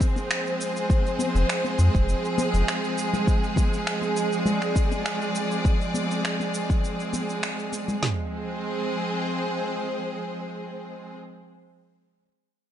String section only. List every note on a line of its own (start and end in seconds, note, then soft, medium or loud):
0.00 8.01 F3 medium
0.00 8.02 G#3 medium
0.00 0.42 A#3 medium
0.00 8.02 C4 medium
0.00 8.02 G#4 medium
0.00 4.46 C5 medium
4.30 8.02 D5 medium
8.02 11.16 F3 medium
8.11 11.16 G#3 medium
8.21 11.16 C4 medium
8.29 11.16 G#4 medium
8.38 11.16 C5 medium